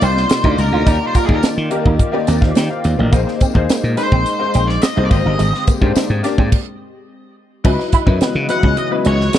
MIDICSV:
0, 0, Header, 1, 9, 480
1, 0, Start_track
1, 0, Tempo, 564972
1, 737, Time_signature, 4, 2, 24, 8
1, 7975, End_track
2, 0, Start_track
2, 0, Title_t, "Lead electric guitar"
2, 0, Program_c, 0, 29
2, 28, Note_on_c, 0, 72, 99
2, 502, Note_off_c, 0, 72, 0
2, 505, Note_on_c, 0, 70, 84
2, 885, Note_off_c, 0, 70, 0
2, 909, Note_on_c, 0, 72, 67
2, 980, Note_off_c, 0, 72, 0
2, 984, Note_on_c, 0, 70, 65
2, 1062, Note_off_c, 0, 70, 0
2, 1067, Note_on_c, 0, 68, 72
2, 1136, Note_on_c, 0, 70, 67
2, 1142, Note_off_c, 0, 68, 0
2, 1215, Note_off_c, 0, 70, 0
2, 3379, Note_on_c, 0, 72, 94
2, 3971, Note_on_c, 0, 74, 89
2, 3998, Note_off_c, 0, 72, 0
2, 4094, Note_off_c, 0, 74, 0
2, 4094, Note_on_c, 0, 75, 104
2, 4284, Note_off_c, 0, 75, 0
2, 4291, Note_on_c, 0, 74, 66
2, 4336, Note_off_c, 0, 74, 0
2, 4339, Note_on_c, 0, 75, 89
2, 4786, Note_off_c, 0, 75, 0
2, 7224, Note_on_c, 0, 78, 105
2, 7458, Note_off_c, 0, 78, 0
2, 7462, Note_on_c, 0, 75, 100
2, 7525, Note_off_c, 0, 75, 0
2, 7707, Note_on_c, 0, 73, 93
2, 7975, Note_off_c, 0, 73, 0
2, 7975, End_track
3, 0, Start_track
3, 0, Title_t, "Grand piano"
3, 0, Program_c, 1, 0
3, 0, Control_c, 1, 64, 127
3, 0, Note_on_c, 1, 58, 74
3, 0, Note_on_c, 1, 63, 71
3, 0, Note_on_c, 1, 65, 72
3, 0, Note_on_c, 1, 74, 78
3, 334, Note_off_c, 1, 58, 0
3, 336, Note_off_c, 1, 63, 0
3, 338, Note_off_c, 1, 65, 0
3, 340, Note_off_c, 1, 74, 0
3, 368, Note_on_c, 1, 58, 72
3, 372, Note_on_c, 1, 63, 69
3, 376, Note_on_c, 1, 65, 68
3, 378, Note_on_c, 1, 74, 79
3, 704, Note_off_c, 1, 58, 0
3, 706, Note_off_c, 1, 63, 0
3, 708, Note_off_c, 1, 65, 0
3, 709, Note_off_c, 1, 74, 0
3, 726, Note_on_c, 1, 58, 68
3, 730, Note_on_c, 1, 63, 64
3, 734, Note_on_c, 1, 67, 61
3, 739, Note_on_c, 1, 74, 77
3, 748, Control_c, 1, 64, 0
3, 903, Control_c, 1, 64, 127
3, 1064, Note_off_c, 1, 58, 0
3, 1066, Note_off_c, 1, 63, 0
3, 1068, Note_off_c, 1, 67, 0
3, 1070, Note_off_c, 1, 74, 0
3, 1084, Note_on_c, 1, 58, 77
3, 1089, Note_on_c, 1, 63, 68
3, 1093, Note_on_c, 1, 67, 66
3, 1095, Note_on_c, 1, 74, 78
3, 1423, Note_off_c, 1, 58, 0
3, 1425, Note_off_c, 1, 63, 0
3, 1427, Note_off_c, 1, 67, 0
3, 1428, Note_off_c, 1, 74, 0
3, 1446, Note_on_c, 1, 58, 99
3, 1450, Note_on_c, 1, 63, 85
3, 1453, Note_on_c, 1, 67, 83
3, 1456, Note_on_c, 1, 70, 98
3, 1784, Note_off_c, 1, 58, 0
3, 1786, Note_off_c, 1, 63, 0
3, 1788, Note_off_c, 1, 67, 0
3, 1789, Note_off_c, 1, 70, 0
3, 1801, Note_on_c, 1, 58, 90
3, 1806, Note_on_c, 1, 63, 82
3, 1809, Note_on_c, 1, 67, 86
3, 1814, Note_on_c, 1, 74, 97
3, 1933, Note_on_c, 1, 75, 58
3, 1936, Note_on_c, 1, 70, 54
3, 1937, Note_off_c, 1, 74, 0
3, 2048, Note_on_c, 1, 77, 72
3, 2050, Note_off_c, 1, 75, 0
3, 2052, Note_off_c, 1, 70, 0
3, 2054, Note_on_c, 1, 72, 54
3, 2168, Note_off_c, 1, 77, 0
3, 2171, Note_off_c, 1, 72, 0
3, 2173, Note_on_c, 1, 79, 67
3, 2179, Note_on_c, 1, 74, 58
3, 2253, Note_off_c, 1, 58, 0
3, 2255, Note_off_c, 1, 63, 0
3, 2257, Note_off_c, 1, 67, 0
3, 2291, Note_off_c, 1, 79, 0
3, 2293, Note_off_c, 1, 74, 0
3, 2293, Note_on_c, 1, 77, 69
3, 2296, Note_on_c, 1, 72, 62
3, 2525, Note_off_c, 1, 77, 0
3, 2526, Note_off_c, 1, 72, 0
3, 2534, Note_on_c, 1, 75, 65
3, 2538, Note_on_c, 1, 70, 51
3, 2646, Note_on_c, 1, 58, 82
3, 2649, Note_on_c, 1, 63, 79
3, 2653, Note_on_c, 1, 68, 75
3, 2656, Note_on_c, 1, 72, 94
3, 2671, Control_c, 1, 64, 0
3, 2765, Note_off_c, 1, 75, 0
3, 2767, Note_off_c, 1, 70, 0
3, 2800, Control_c, 1, 64, 127
3, 2985, Note_off_c, 1, 58, 0
3, 2987, Note_off_c, 1, 63, 0
3, 2989, Note_off_c, 1, 68, 0
3, 2990, Note_off_c, 1, 72, 0
3, 3008, Note_on_c, 1, 58, 88
3, 3011, Note_on_c, 1, 63, 78
3, 3015, Note_on_c, 1, 68, 84
3, 3018, Note_on_c, 1, 72, 96
3, 3346, Note_off_c, 1, 58, 0
3, 3348, Note_off_c, 1, 63, 0
3, 3349, Note_off_c, 1, 68, 0
3, 3351, Note_off_c, 1, 72, 0
3, 3367, Note_on_c, 1, 58, 75
3, 3372, Note_on_c, 1, 63, 67
3, 3377, Note_on_c, 1, 68, 70
3, 3378, Note_on_c, 1, 72, 82
3, 3706, Note_off_c, 1, 58, 0
3, 3708, Note_off_c, 1, 63, 0
3, 3710, Note_off_c, 1, 68, 0
3, 3711, Note_off_c, 1, 72, 0
3, 3728, Note_on_c, 1, 58, 77
3, 3733, Note_on_c, 1, 63, 74
3, 3734, Note_on_c, 1, 68, 69
3, 3737, Note_on_c, 1, 72, 88
3, 4176, Note_off_c, 1, 58, 0
3, 4179, Note_off_c, 1, 63, 0
3, 4180, Note_off_c, 1, 68, 0
3, 4181, Note_off_c, 1, 72, 0
3, 4214, Note_on_c, 1, 58, 68
3, 4219, Note_on_c, 1, 63, 69
3, 4221, Note_on_c, 1, 68, 69
3, 4225, Note_on_c, 1, 72, 82
3, 4316, Note_off_c, 1, 58, 0
3, 4329, Note_on_c, 1, 58, 83
3, 4330, Note_off_c, 1, 72, 0
3, 4335, Note_on_c, 1, 50, 76
3, 4338, Note_on_c, 1, 67, 73
3, 4340, Note_off_c, 1, 63, 0
3, 4341, Note_off_c, 1, 68, 0
3, 4343, Note_on_c, 1, 72, 87
3, 4352, Control_c, 1, 64, 0
3, 4523, Control_c, 1, 64, 127
3, 4887, Note_off_c, 1, 58, 0
3, 4890, Note_off_c, 1, 50, 0
3, 4892, Note_off_c, 1, 67, 0
3, 4894, Note_off_c, 1, 72, 0
3, 4937, Note_on_c, 1, 58, 81
3, 4941, Note_on_c, 1, 62, 82
3, 4942, Note_on_c, 1, 67, 79
3, 4947, Note_on_c, 1, 72, 94
3, 5270, Note_off_c, 1, 58, 0
3, 5272, Note_off_c, 1, 62, 0
3, 5272, Note_off_c, 1, 67, 0
3, 5275, Note_off_c, 1, 72, 0
3, 5293, Note_on_c, 1, 58, 90
3, 5294, Note_on_c, 1, 62, 86
3, 5299, Note_on_c, 1, 67, 77
3, 5302, Note_on_c, 1, 74, 100
3, 5536, Note_off_c, 1, 58, 0
3, 5537, Note_off_c, 1, 62, 0
3, 5539, Note_off_c, 1, 67, 0
3, 5541, Note_off_c, 1, 74, 0
3, 5549, Control_c, 1, 64, 0
3, 6492, Note_on_c, 1, 54, 82
3, 6494, Note_on_c, 1, 63, 78
3, 6499, Note_on_c, 1, 64, 75
3, 6502, Note_on_c, 1, 71, 92
3, 6676, Control_c, 1, 64, 127
3, 6825, Note_off_c, 1, 54, 0
3, 6826, Note_off_c, 1, 63, 0
3, 6829, Note_off_c, 1, 64, 0
3, 6830, Note_off_c, 1, 71, 0
3, 6846, Note_on_c, 1, 54, 89
3, 6851, Note_on_c, 1, 63, 76
3, 6854, Note_on_c, 1, 64, 78
3, 6856, Note_on_c, 1, 71, 96
3, 7182, Note_off_c, 1, 54, 0
3, 7184, Note_off_c, 1, 63, 0
3, 7186, Note_off_c, 1, 64, 0
3, 7187, Note_off_c, 1, 71, 0
3, 7205, Note_on_c, 1, 54, 77
3, 7209, Note_on_c, 1, 63, 72
3, 7214, Note_on_c, 1, 64, 71
3, 7215, Note_on_c, 1, 71, 92
3, 7540, Note_off_c, 1, 54, 0
3, 7542, Note_off_c, 1, 63, 0
3, 7545, Note_off_c, 1, 64, 0
3, 7546, Note_off_c, 1, 71, 0
3, 7566, Note_on_c, 1, 54, 77
3, 7567, Note_on_c, 1, 63, 70
3, 7571, Note_on_c, 1, 64, 68
3, 7574, Note_on_c, 1, 71, 88
3, 7975, Note_off_c, 1, 54, 0
3, 7975, Note_off_c, 1, 63, 0
3, 7975, Note_off_c, 1, 64, 0
3, 7975, Note_off_c, 1, 71, 0
3, 7975, End_track
4, 0, Start_track
4, 0, Title_t, "Clean electric guitar"
4, 0, Program_c, 2, 27
4, 18, Note_on_c, 2, 60, 87
4, 111, Note_off_c, 2, 60, 0
4, 374, Note_on_c, 2, 63, 73
4, 469, Note_off_c, 2, 63, 0
4, 617, Note_on_c, 2, 65, 66
4, 711, Note_off_c, 2, 65, 0
4, 735, Note_on_c, 2, 63, 86
4, 830, Note_off_c, 2, 63, 0
4, 975, Note_on_c, 2, 65, 81
4, 1070, Note_off_c, 2, 65, 0
4, 1217, Note_on_c, 2, 62, 68
4, 1311, Note_off_c, 2, 62, 0
4, 1577, Note_on_c, 2, 63, 78
4, 1672, Note_off_c, 2, 63, 0
4, 1813, Note_on_c, 2, 58, 81
4, 1910, Note_off_c, 2, 58, 0
4, 1936, Note_on_c, 2, 60, 80
4, 2031, Note_off_c, 2, 60, 0
4, 2173, Note_on_c, 2, 58, 87
4, 2270, Note_off_c, 2, 58, 0
4, 2536, Note_on_c, 2, 58, 70
4, 2632, Note_off_c, 2, 58, 0
4, 2656, Note_on_c, 2, 58, 94
4, 2752, Note_off_c, 2, 58, 0
4, 2903, Note_on_c, 2, 60, 73
4, 2996, Note_off_c, 2, 60, 0
4, 3143, Note_on_c, 2, 58, 78
4, 3236, Note_off_c, 2, 58, 0
4, 3500, Note_on_c, 2, 60, 80
4, 3595, Note_off_c, 2, 60, 0
4, 3862, Note_on_c, 2, 60, 78
4, 3955, Note_off_c, 2, 60, 0
4, 4220, Note_on_c, 2, 63, 77
4, 4315, Note_off_c, 2, 63, 0
4, 4461, Note_on_c, 2, 63, 69
4, 4555, Note_off_c, 2, 63, 0
4, 4579, Note_on_c, 2, 56, 86
4, 4674, Note_off_c, 2, 56, 0
4, 4821, Note_on_c, 2, 58, 70
4, 4915, Note_off_c, 2, 58, 0
4, 5064, Note_on_c, 2, 63, 68
4, 5157, Note_off_c, 2, 63, 0
4, 5422, Note_on_c, 2, 60, 77
4, 5515, Note_off_c, 2, 60, 0
4, 6498, Note_on_c, 2, 61, 85
4, 6592, Note_off_c, 2, 61, 0
4, 6738, Note_on_c, 2, 64, 77
4, 6831, Note_off_c, 2, 64, 0
4, 6975, Note_on_c, 2, 59, 74
4, 7070, Note_off_c, 2, 59, 0
4, 7334, Note_on_c, 2, 61, 80
4, 7428, Note_off_c, 2, 61, 0
4, 7691, Note_on_c, 2, 61, 82
4, 7786, Note_off_c, 2, 61, 0
4, 7975, End_track
5, 0, Start_track
5, 0, Title_t, "Analog synth pad"
5, 0, Program_c, 3, 89
5, 0, Note_on_c, 3, 48, 75
5, 0, Note_on_c, 3, 55, 63
5, 0, Note_on_c, 3, 58, 64
5, 0, Note_on_c, 3, 63, 62
5, 0, Note_on_c, 3, 65, 79
5, 0, Note_on_c, 3, 74, 64
5, 716, Note_off_c, 3, 55, 0
5, 716, Note_off_c, 3, 63, 0
5, 717, Note_off_c, 3, 48, 0
5, 737, Note_on_c, 3, 67, 82
5, 738, Note_on_c, 3, 51, 74
5, 2626, Note_off_c, 3, 65, 0
5, 2627, Note_off_c, 3, 74, 0
5, 2641, Note_off_c, 3, 67, 0
5, 2642, Note_off_c, 3, 51, 0
5, 2655, Note_on_c, 3, 63, 84
5, 2657, Note_on_c, 3, 56, 74
5, 4307, Note_off_c, 3, 58, 0
5, 4322, Note_off_c, 3, 63, 0
5, 4323, Note_off_c, 3, 56, 0
5, 4345, Note_on_c, 3, 56, 75
5, 4345, Note_on_c, 3, 67, 87
5, 4347, Note_on_c, 3, 60, 68
5, 5530, Note_off_c, 3, 56, 0
5, 5530, Note_off_c, 3, 67, 0
5, 5531, Note_off_c, 3, 60, 0
5, 6490, Note_on_c, 3, 66, 83
5, 6491, Note_on_c, 3, 59, 68
5, 6492, Note_on_c, 3, 49, 77
5, 6493, Note_on_c, 3, 52, 68
5, 6494, Note_on_c, 3, 56, 65
5, 6495, Note_on_c, 3, 75, 63
5, 7975, Note_off_c, 3, 49, 0
5, 7975, Note_off_c, 3, 52, 0
5, 7975, Note_off_c, 3, 56, 0
5, 7975, Note_off_c, 3, 59, 0
5, 7975, Note_off_c, 3, 66, 0
5, 7975, Note_off_c, 3, 75, 0
5, 7975, End_track
6, 0, Start_track
6, 0, Title_t, "Slap bass"
6, 0, Program_c, 4, 36
6, 15, Note_on_c, 4, 36, 84
6, 206, Note_off_c, 4, 36, 0
6, 375, Note_on_c, 4, 38, 94
6, 471, Note_off_c, 4, 38, 0
6, 494, Note_on_c, 4, 37, 92
6, 591, Note_off_c, 4, 37, 0
6, 612, Note_on_c, 4, 38, 90
6, 709, Note_off_c, 4, 38, 0
6, 737, Note_on_c, 4, 39, 98
6, 832, Note_off_c, 4, 39, 0
6, 1094, Note_on_c, 4, 39, 89
6, 1191, Note_off_c, 4, 39, 0
6, 1338, Note_on_c, 4, 51, 93
6, 1434, Note_off_c, 4, 51, 0
6, 1578, Note_on_c, 4, 39, 80
6, 1673, Note_off_c, 4, 39, 0
6, 1938, Note_on_c, 4, 39, 91
6, 2129, Note_off_c, 4, 39, 0
6, 2178, Note_on_c, 4, 51, 92
6, 2274, Note_off_c, 4, 51, 0
6, 2418, Note_on_c, 4, 39, 94
6, 2514, Note_off_c, 4, 39, 0
6, 2541, Note_on_c, 4, 33, 89
6, 2636, Note_off_c, 4, 33, 0
6, 2657, Note_on_c, 4, 34, 114
6, 2753, Note_off_c, 4, 34, 0
6, 3016, Note_on_c, 4, 39, 91
6, 3113, Note_off_c, 4, 39, 0
6, 3259, Note_on_c, 4, 46, 99
6, 3355, Note_off_c, 4, 46, 0
6, 3501, Note_on_c, 4, 34, 91
6, 3596, Note_off_c, 4, 34, 0
6, 3864, Note_on_c, 4, 34, 90
6, 4053, Note_off_c, 4, 34, 0
6, 4223, Note_on_c, 4, 36, 94
6, 4317, Note_off_c, 4, 36, 0
6, 4343, Note_on_c, 4, 32, 90
6, 4437, Note_off_c, 4, 32, 0
6, 4466, Note_on_c, 4, 31, 84
6, 4559, Note_off_c, 4, 31, 0
6, 4586, Note_on_c, 4, 32, 108
6, 4679, Note_off_c, 4, 32, 0
6, 4940, Note_on_c, 4, 44, 93
6, 5035, Note_off_c, 4, 44, 0
6, 5181, Note_on_c, 4, 44, 94
6, 5276, Note_off_c, 4, 44, 0
6, 5422, Note_on_c, 4, 44, 94
6, 5517, Note_off_c, 4, 44, 0
6, 6497, Note_on_c, 4, 37, 98
6, 6592, Note_off_c, 4, 37, 0
6, 6855, Note_on_c, 4, 42, 91
6, 6950, Note_off_c, 4, 42, 0
6, 7096, Note_on_c, 4, 49, 100
6, 7191, Note_off_c, 4, 49, 0
6, 7334, Note_on_c, 4, 37, 93
6, 7429, Note_off_c, 4, 37, 0
6, 7697, Note_on_c, 4, 37, 97
6, 7885, Note_off_c, 4, 37, 0
6, 7975, End_track
7, 0, Start_track
7, 0, Title_t, "Muted clean electric guitar strokes"
7, 494, Note_on_c, 9, 29, 43
7, 578, Note_off_c, 9, 29, 0
7, 856, Note_on_c, 9, 29, 41
7, 941, Note_off_c, 9, 29, 0
7, 1456, Note_on_c, 9, 29, 42
7, 1541, Note_off_c, 9, 29, 0
7, 1693, Note_on_c, 9, 29, 42
7, 1778, Note_off_c, 9, 29, 0
7, 2418, Note_on_c, 9, 29, 48
7, 2502, Note_off_c, 9, 29, 0
7, 2778, Note_on_c, 9, 29, 42
7, 2863, Note_off_c, 9, 29, 0
7, 3381, Note_on_c, 9, 29, 45
7, 3466, Note_off_c, 9, 29, 0
7, 4341, Note_on_c, 9, 29, 44
7, 4426, Note_off_c, 9, 29, 0
7, 4701, Note_on_c, 9, 29, 45
7, 4786, Note_off_c, 9, 29, 0
7, 5303, Note_on_c, 9, 29, 46
7, 5388, Note_off_c, 9, 29, 0
7, 6621, Note_on_c, 9, 29, 42
7, 6706, Note_off_c, 9, 29, 0
7, 7215, Note_on_c, 9, 29, 44
7, 7300, Note_off_c, 9, 29, 0
7, 7975, End_track
8, 0, Start_track
8, 0, Title_t, "Muted slap bass strokes"
8, 1220, Note_on_c, 9, 29, 48
8, 1305, Note_off_c, 9, 29, 0
8, 3138, Note_on_c, 9, 29, 51
8, 3223, Note_off_c, 9, 29, 0
8, 5064, Note_on_c, 9, 29, 45
8, 5149, Note_off_c, 9, 29, 0
8, 6976, Note_on_c, 9, 29, 50
8, 7061, Note_off_c, 9, 29, 0
8, 7975, End_track
9, 0, Start_track
9, 0, Title_t, "Drums"
9, 12, Note_on_c, 9, 42, 76
9, 14, Note_on_c, 9, 54, 60
9, 97, Note_off_c, 9, 42, 0
9, 99, Note_off_c, 9, 54, 0
9, 144, Note_on_c, 9, 38, 30
9, 229, Note_off_c, 9, 38, 0
9, 251, Note_on_c, 9, 42, 84
9, 259, Note_on_c, 9, 54, 83
9, 263, Note_on_c, 9, 38, 108
9, 336, Note_off_c, 9, 42, 0
9, 344, Note_off_c, 9, 54, 0
9, 348, Note_off_c, 9, 38, 0
9, 374, Note_on_c, 9, 36, 82
9, 459, Note_off_c, 9, 36, 0
9, 495, Note_on_c, 9, 42, 73
9, 497, Note_on_c, 9, 54, 48
9, 580, Note_off_c, 9, 42, 0
9, 582, Note_off_c, 9, 54, 0
9, 736, Note_on_c, 9, 36, 110
9, 736, Note_on_c, 9, 42, 84
9, 738, Note_on_c, 9, 54, 59
9, 821, Note_off_c, 9, 36, 0
9, 821, Note_off_c, 9, 42, 0
9, 823, Note_off_c, 9, 54, 0
9, 973, Note_on_c, 9, 42, 78
9, 975, Note_on_c, 9, 54, 55
9, 976, Note_on_c, 9, 36, 83
9, 1058, Note_off_c, 9, 42, 0
9, 1060, Note_off_c, 9, 54, 0
9, 1061, Note_off_c, 9, 36, 0
9, 1094, Note_on_c, 9, 36, 94
9, 1179, Note_off_c, 9, 36, 0
9, 1213, Note_on_c, 9, 42, 88
9, 1215, Note_on_c, 9, 54, 96
9, 1220, Note_on_c, 9, 38, 118
9, 1298, Note_off_c, 9, 42, 0
9, 1300, Note_off_c, 9, 54, 0
9, 1305, Note_off_c, 9, 38, 0
9, 1452, Note_on_c, 9, 42, 85
9, 1537, Note_off_c, 9, 42, 0
9, 1576, Note_on_c, 9, 36, 78
9, 1661, Note_off_c, 9, 36, 0
9, 1694, Note_on_c, 9, 36, 86
9, 1694, Note_on_c, 9, 42, 76
9, 1779, Note_off_c, 9, 36, 0
9, 1779, Note_off_c, 9, 42, 0
9, 1930, Note_on_c, 9, 42, 74
9, 1936, Note_on_c, 9, 54, 59
9, 1941, Note_on_c, 9, 38, 33
9, 2015, Note_off_c, 9, 42, 0
9, 2021, Note_off_c, 9, 54, 0
9, 2026, Note_off_c, 9, 38, 0
9, 2055, Note_on_c, 9, 36, 88
9, 2061, Note_on_c, 9, 38, 30
9, 2140, Note_off_c, 9, 36, 0
9, 2146, Note_off_c, 9, 38, 0
9, 2169, Note_on_c, 9, 42, 80
9, 2182, Note_on_c, 9, 38, 111
9, 2183, Note_on_c, 9, 54, 84
9, 2254, Note_off_c, 9, 42, 0
9, 2267, Note_off_c, 9, 38, 0
9, 2268, Note_off_c, 9, 54, 0
9, 2413, Note_on_c, 9, 42, 75
9, 2415, Note_on_c, 9, 54, 48
9, 2498, Note_off_c, 9, 42, 0
9, 2500, Note_off_c, 9, 54, 0
9, 2656, Note_on_c, 9, 36, 106
9, 2656, Note_on_c, 9, 42, 85
9, 2656, Note_on_c, 9, 54, 55
9, 2741, Note_off_c, 9, 36, 0
9, 2741, Note_off_c, 9, 42, 0
9, 2741, Note_off_c, 9, 54, 0
9, 2785, Note_on_c, 9, 38, 33
9, 2870, Note_off_c, 9, 38, 0
9, 2894, Note_on_c, 9, 42, 74
9, 2898, Note_on_c, 9, 36, 89
9, 2898, Note_on_c, 9, 54, 53
9, 2979, Note_off_c, 9, 42, 0
9, 2983, Note_off_c, 9, 36, 0
9, 2983, Note_off_c, 9, 54, 0
9, 3017, Note_on_c, 9, 36, 85
9, 3102, Note_off_c, 9, 36, 0
9, 3139, Note_on_c, 9, 42, 84
9, 3141, Note_on_c, 9, 54, 90
9, 3146, Note_on_c, 9, 38, 117
9, 3224, Note_off_c, 9, 42, 0
9, 3226, Note_off_c, 9, 54, 0
9, 3231, Note_off_c, 9, 38, 0
9, 3376, Note_on_c, 9, 42, 85
9, 3386, Note_on_c, 9, 38, 32
9, 3387, Note_on_c, 9, 54, 30
9, 3461, Note_off_c, 9, 42, 0
9, 3471, Note_off_c, 9, 38, 0
9, 3472, Note_off_c, 9, 54, 0
9, 3500, Note_on_c, 9, 36, 85
9, 3585, Note_off_c, 9, 36, 0
9, 3618, Note_on_c, 9, 42, 85
9, 3624, Note_on_c, 9, 54, 33
9, 3703, Note_off_c, 9, 42, 0
9, 3709, Note_off_c, 9, 54, 0
9, 3855, Note_on_c, 9, 42, 75
9, 3862, Note_on_c, 9, 54, 55
9, 3940, Note_off_c, 9, 42, 0
9, 3947, Note_off_c, 9, 54, 0
9, 3986, Note_on_c, 9, 38, 33
9, 4071, Note_off_c, 9, 38, 0
9, 4092, Note_on_c, 9, 42, 80
9, 4105, Note_on_c, 9, 38, 103
9, 4107, Note_on_c, 9, 54, 86
9, 4177, Note_off_c, 9, 42, 0
9, 4190, Note_off_c, 9, 38, 0
9, 4192, Note_off_c, 9, 54, 0
9, 4338, Note_on_c, 9, 49, 69
9, 4341, Note_on_c, 9, 36, 109
9, 4341, Note_on_c, 9, 54, 44
9, 4423, Note_off_c, 9, 49, 0
9, 4426, Note_off_c, 9, 36, 0
9, 4426, Note_off_c, 9, 54, 0
9, 4582, Note_on_c, 9, 42, 80
9, 4586, Note_on_c, 9, 54, 54
9, 4667, Note_off_c, 9, 42, 0
9, 4671, Note_off_c, 9, 54, 0
9, 4711, Note_on_c, 9, 38, 36
9, 4796, Note_off_c, 9, 38, 0
9, 4819, Note_on_c, 9, 54, 57
9, 4822, Note_on_c, 9, 42, 80
9, 4823, Note_on_c, 9, 36, 82
9, 4904, Note_off_c, 9, 54, 0
9, 4907, Note_off_c, 9, 42, 0
9, 4908, Note_off_c, 9, 36, 0
9, 4941, Note_on_c, 9, 36, 91
9, 5026, Note_off_c, 9, 36, 0
9, 5059, Note_on_c, 9, 54, 86
9, 5061, Note_on_c, 9, 42, 83
9, 5068, Note_on_c, 9, 38, 119
9, 5144, Note_off_c, 9, 54, 0
9, 5146, Note_off_c, 9, 42, 0
9, 5153, Note_off_c, 9, 38, 0
9, 5301, Note_on_c, 9, 42, 86
9, 5305, Note_on_c, 9, 54, 31
9, 5311, Note_on_c, 9, 38, 33
9, 5386, Note_off_c, 9, 42, 0
9, 5390, Note_off_c, 9, 54, 0
9, 5396, Note_off_c, 9, 38, 0
9, 5422, Note_on_c, 9, 36, 83
9, 5507, Note_off_c, 9, 36, 0
9, 5541, Note_on_c, 9, 36, 100
9, 5541, Note_on_c, 9, 57, 93
9, 5626, Note_off_c, 9, 36, 0
9, 5626, Note_off_c, 9, 57, 0
9, 6496, Note_on_c, 9, 57, 91
9, 6497, Note_on_c, 9, 36, 110
9, 6581, Note_off_c, 9, 57, 0
9, 6582, Note_off_c, 9, 36, 0
9, 6625, Note_on_c, 9, 38, 34
9, 6710, Note_off_c, 9, 38, 0
9, 6733, Note_on_c, 9, 42, 81
9, 6737, Note_on_c, 9, 36, 84
9, 6818, Note_off_c, 9, 42, 0
9, 6822, Note_off_c, 9, 36, 0
9, 6854, Note_on_c, 9, 36, 90
9, 6939, Note_off_c, 9, 36, 0
9, 6974, Note_on_c, 9, 42, 89
9, 6981, Note_on_c, 9, 38, 122
9, 7058, Note_off_c, 9, 42, 0
9, 7066, Note_off_c, 9, 38, 0
9, 7211, Note_on_c, 9, 42, 83
9, 7221, Note_on_c, 9, 38, 34
9, 7296, Note_off_c, 9, 42, 0
9, 7306, Note_off_c, 9, 38, 0
9, 7334, Note_on_c, 9, 36, 83
9, 7419, Note_off_c, 9, 36, 0
9, 7452, Note_on_c, 9, 42, 85
9, 7537, Note_off_c, 9, 42, 0
9, 7687, Note_on_c, 9, 42, 80
9, 7772, Note_off_c, 9, 42, 0
9, 7820, Note_on_c, 9, 38, 34
9, 7905, Note_off_c, 9, 38, 0
9, 7928, Note_on_c, 9, 42, 85
9, 7940, Note_on_c, 9, 38, 102
9, 7975, Note_off_c, 9, 38, 0
9, 7975, Note_off_c, 9, 42, 0
9, 7975, End_track
0, 0, End_of_file